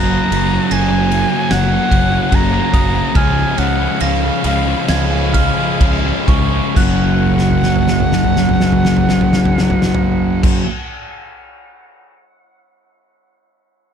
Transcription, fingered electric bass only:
0.00 0.18 F#1 loud
0.31 0.57 F#1 medium
0.71 1.23 F#1 loud
1.51 1.77 F#1 loud
1.91 2.18 F#1 medium
2.32 2.59 F#1 loud
2.73 3.01 F#1 medium
3.15 3.42 C#2 loud
3.58 3.86 C#2 loud
4.01 4.29 C#2 loud
4.44 4.73 C#2 medium
4.89 5.48 C#2 loud
5.80 6.11 C#2 loud
6.28 6.59 C#2 loud
6.76 10.59 F#1 loud

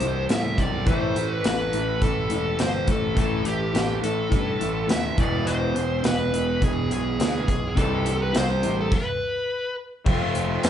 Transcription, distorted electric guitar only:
0.00 0.85 C3 medium
0.00 0.86 G3 medium
0.00 0.88 C4 medium
0.86 3.14 A2 medium
0.86 3.17 E3 medium
0.86 3.16 A3 medium
3.16 5.16 A2 medium
3.16 5.19 E3 medium
3.16 5.17 A3 medium
5.17 7.46 E2 medium
5.17 7.47 B2 medium
5.17 7.47 E3 medium
7.77 8.90 C3 medium
7.77 8.91 G3 medium
7.77 8.91 C4 medium
10.06 10.49 F3 medium
10.06 10.22 A3 medium
10.06 10.22 C4 medium
10.06 10.20 F4 medium
10.21 10.64 A3 medium
10.21 10.65 C4 medium
10.21 10.65 F4 medium
10.64 10.70 F3 medium
10.64 10.70 A3 medium
10.64 10.70 C4 medium
10.64 10.70 F4 medium

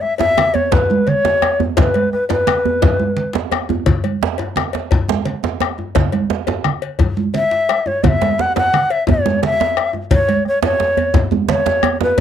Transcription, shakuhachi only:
0.01 0.18 E5 medium
0.18 0.56 E5 loud
0.55 0.74 C#5 medium
0.72 1.10 B4 medium
1.08 1.60 C#5 loud
1.78 2.10 B4 medium
1.78 1.83 C#5 medium
2.13 2.28 B4 medium
2.30 3.30 B4 medium
7.35 7.89 E5 loud
7.87 8.05 C#5 medium
8.04 8.09 F#5 medium
8.08 8.42 E5 loud
8.41 8.56 F#5 medium
8.57 8.92 F#5 medium
8.91 9.08 E5 loud
9.10 9.41 C#5 medium
9.45 9.92 E5 loud
10.12 10.44 C#5 loud
10.48 10.63 C#5 medium
10.64 11.20 C#5 medium
11.50 11.98 C#5 medium
12.03 12.18 B4 medium

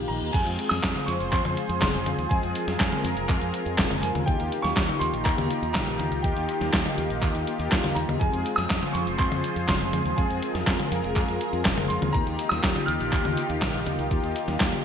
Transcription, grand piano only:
0.08 0.34 A#5 medium
0.33 0.71 G#5 loud
0.69 1.08 D#6 loud
1.06 1.12 C#6 loud
1.31 1.78 C6 loud
1.80 2.31 C6 medium
2.29 3.24 G#5 medium
4.02 4.07 G#5 medium
4.26 4.65 G5 medium
4.62 5.01 C#6 loud
4.99 5.26 C6 loud
5.24 5.71 A#5 loud
5.73 6.25 A#5 medium
6.22 7.18 G5 medium
7.95 8.21 A#5 medium
8.19 8.58 G#5 loud
8.56 8.95 D#6 loud
8.93 9.19 C#6 loud
9.18 9.64 C6 loud
9.67 10.13 C6 loud
10.16 11.11 G#5 medium
11.88 12.14 C6 medium
12.13 12.52 A#5 loud
12.49 12.88 D#6 loud
12.86 14.85 F6 loud

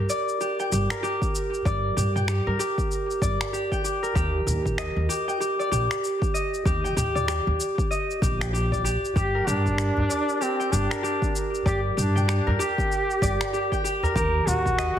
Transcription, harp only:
0.00 0.40 G4 medium
0.00 0.90 A#4 medium
0.09 1.65 D5 medium
0.41 0.72 G4 medium
0.59 2.15 G5 medium
0.72 1.02 G4 medium
0.91 2.46 A#4 medium
1.03 1.96 G4 loud
1.66 3.21 D5 medium
1.96 2.28 G4 medium
2.16 3.71 G5 medium
2.28 2.59 G4 medium
2.47 4.02 A#4 medium
2.59 3.52 G4 medium
3.22 4.84 D5 medium
3.53 3.84 G4 medium
3.72 5.27 G5 medium
3.84 4.15 G4 medium
4.03 6.15 A#4 medium
4.15 5.09 G4 medium
4.78 5.65 D#5 medium
5.09 5.40 G4 medium
5.28 6.83 G5 medium
5.40 5.71 G4 medium
5.59 6.40 D5 medium
5.71 6.65 G4 loud
6.34 7.21 D#5 medium
6.65 6.96 G4 medium
6.84 8.39 G5 medium
6.97 7.27 G4 medium
7.15 7.97 D5 medium
7.28 8.21 G4 medium
7.91 8.78 D#5 medium
8.22 8.53 G4 medium
8.41 9.96 G5 medium
8.53 8.84 G4 medium
8.72 10.09 D5 medium
8.84 9.16 G4 medium
9.16 9.47 G4 medium
9.35 10.90 A#4 medium
9.47 10.40 G4 medium
10.09 11.65 D5 medium
10.41 10.72 G4 medium
10.60 12.15 G5 medium
10.72 11.03 G4 medium
10.90 12.46 A#4 medium
11.03 11.96 G4 loud
11.66 13.22 D5 medium
11.97 12.28 G4 medium
12.15 13.71 G5 medium
12.28 12.59 G4 medium
12.47 14.03 A#4 medium
12.59 13.53 G4 medium
13.22 14.84 D5 medium
13.53 13.84 G4 medium
13.72 14.99 G5 medium
13.84 14.15 G4 medium
14.03 14.99 A#4 medium
14.15 14.99 G4 medium
14.78 14.99 D#5 medium

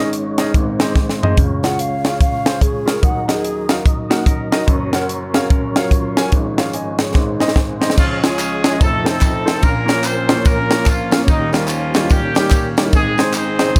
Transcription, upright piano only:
0.00 0.50 G#1 medium
0.00 0.50 G#2 medium
0.39 0.50 C#4 medium
0.39 0.51 D#4 medium
0.39 0.51 G#4 medium
0.39 0.51 D#5 medium
0.55 1.33 G#1 medium
0.55 1.33 G#2 medium
0.80 0.92 C4 medium
0.80 0.92 D#4 medium
0.80 0.92 G#4 medium
0.80 0.92 D#5 medium
1.23 1.34 C4 medium
1.23 1.34 D#4 medium
1.23 1.34 G#4 medium
1.23 1.34 D#5 medium
1.38 2.99 C#2 medium
1.38 2.99 C#3 medium
1.63 1.74 C#4 medium
1.63 1.75 F4 medium
1.63 1.75 G#4 medium
1.63 1.75 F5 medium
2.04 2.16 C#4 medium
2.04 2.16 F4 medium
2.04 2.16 G#4 medium
2.04 2.16 F5 medium
2.45 2.57 C#4 medium
2.45 2.57 F4 medium
2.45 2.57 G#4 medium
2.45 2.57 C5 medium
2.85 2.98 C#4 medium
2.85 2.98 F4 medium
2.85 2.98 G#4 medium
2.85 2.98 A#4 medium
3.02 4.64 D#2 medium
3.02 4.64 D#3 medium
3.28 3.40 D#4 medium
3.28 3.39 F#4 medium
3.28 3.40 A#4 medium
3.28 3.40 F#5 medium
3.69 3.81 D#4 medium
3.69 3.81 F#4 medium
3.69 3.81 A#4 medium
3.69 3.81 F5 medium
4.11 4.22 D#4 medium
4.11 4.22 F#4 medium
4.11 4.22 A#4 medium
4.11 4.22 F#5 medium
4.51 4.64 D#4 medium
4.51 4.64 F#4 medium
4.51 4.63 A#4 medium
4.51 4.64 D#5 medium
4.67 6.29 F#1 medium
4.67 6.29 F#2 medium
4.94 5.05 C#4 medium
4.94 5.05 F#4 medium
4.94 5.06 A#4 medium
4.94 5.05 F#5 medium
5.34 5.46 C#4 medium
5.34 5.46 F#4 medium
5.34 5.46 A#4 medium
5.34 5.46 F5 medium
5.76 5.88 C#4 medium
5.76 5.88 F#4 medium
5.76 5.88 A#4 medium
5.76 5.88 F5 medium
6.16 6.29 C#4 medium
6.16 6.29 F#4 medium
6.16 6.29 A#4 medium
6.16 6.29 G#5 medium
6.33 7.12 G#1 medium
6.33 7.12 G#2 medium
6.58 6.70 C#4 medium
6.58 6.70 F4 medium
6.58 6.70 G#4 medium
6.58 6.70 F5 medium
6.74 6.99 D#5 medium
6.74 6.99 G#5 medium
6.99 7.39 G#4 medium
6.99 7.39 C#5 medium
7.14 7.94 G#1 medium
7.14 7.94 G#2 medium
7.40 7.53 C4 medium
7.40 7.52 D#4 medium
7.40 7.53 G#4 medium
7.40 7.53 D#5 medium
7.80 7.93 C4 medium
7.80 7.93 D#4 medium
7.80 7.93 G#4 medium
7.80 7.93 D#5 medium
7.96 8.76 C#2 medium
7.96 8.75 C#3 medium
8.23 8.35 G#3 medium
8.23 8.35 C#4 medium
8.23 8.35 F4 medium
8.23 8.35 C#5 medium
8.64 8.70 G#3 medium
8.64 8.71 C#4 medium
8.64 8.70 F4 medium
8.64 8.70 G#4 medium
8.72 8.80 G#3 medium
8.72 8.80 C#4 medium
8.72 8.80 F4 medium
8.72 8.80 D#5 medium
8.80 9.59 F1 medium
8.80 9.59 F2 medium
9.05 9.17 A3 medium
9.05 9.17 D#4 medium
9.05 9.17 F4 medium
9.05 9.17 C5 medium
9.46 9.52 A3 medium
9.46 9.52 D#4 medium
9.46 9.52 F4 medium
9.46 9.52 C5 medium
9.53 9.62 A3 medium
9.53 9.62 D#4 medium
9.53 9.62 F4 medium
9.53 9.63 C5 medium
9.62 11.23 A#1 medium
9.62 11.23 A#2 medium
9.85 9.99 A#3 medium
9.85 9.99 C#4 medium
9.85 9.99 F4 medium
9.85 9.99 C#5 medium
10.29 10.35 A#3 medium
10.29 10.35 C#4 medium
10.29 10.35 F4 medium
10.29 10.35 C5 medium
10.36 10.51 A#3 medium
10.36 10.51 C#4 medium
10.36 10.51 F4 medium
10.36 10.51 C#5 medium
10.71 10.82 A#3 medium
10.71 10.82 C#4 medium
10.71 10.83 F4 medium
10.71 10.82 C#5 medium
11.11 11.17 A#3 medium
11.11 11.17 C#4 medium
11.11 11.17 F4 medium
11.11 11.18 A#4 medium
11.18 11.27 A#3 medium
11.18 11.27 C#4 medium
11.18 11.27 F4 medium
11.18 11.27 C#5 medium
11.26 12.88 D#2 medium
11.26 12.88 D#3 medium
11.52 11.65 G3 medium
11.52 11.64 C#4 medium
11.52 11.65 D#4 medium
11.52 11.65 A#4 medium
11.95 12.01 G3 medium
11.95 12.01 C#4 medium
11.95 12.01 D#4 medium
11.95 12.01 C#5 medium
12.03 12.17 G3 medium
12.03 12.17 C#4 medium
12.03 12.17 D#4 medium
12.03 12.17 F4 medium
12.36 12.48 G3 medium
12.36 12.48 C#4 medium
12.36 12.48 D#4 medium
12.36 12.48 G4 medium
12.78 12.83 G3 medium
12.78 12.83 C#4 medium
12.78 12.83 D#4 medium
12.78 12.83 G4 medium
12.84 12.93 G3 medium
12.84 12.93 C#4 medium
12.84 12.93 D#4 medium
12.84 12.93 A#4 medium
12.93 13.80 G#1 medium
12.93 13.80 G#2 medium
13.19 13.30 G#3 medium
13.19 13.31 C4 medium
13.19 13.31 D#4 medium
13.19 13.31 C5 medium
13.60 13.66 G#3 medium
13.60 13.66 C4 medium
13.60 13.66 D#4 medium
13.60 13.66 C5 medium
13.67 13.80 G#3 medium
13.67 13.80 C4 medium
13.67 13.80 D#4 medium
13.67 13.80 C5 medium

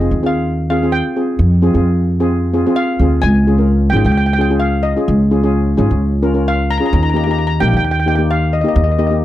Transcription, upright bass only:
0.11 1.00 D#2 medium
1.39 1.71 F2 loud
1.75 2.62 F2 medium
2.99 3.21 D2 medium
3.23 3.88 C#2 loud
3.93 4.04 G#1 medium
4.04 4.93 C#2 medium
5.08 5.73 C#2 loud
5.78 5.89 G#1 medium
5.91 6.78 C#2 medium
6.93 7.58 D#2 loud
7.62 7.72 A#1 medium
7.73 8.61 D#2 medium
8.76 9.25 D#2 loud

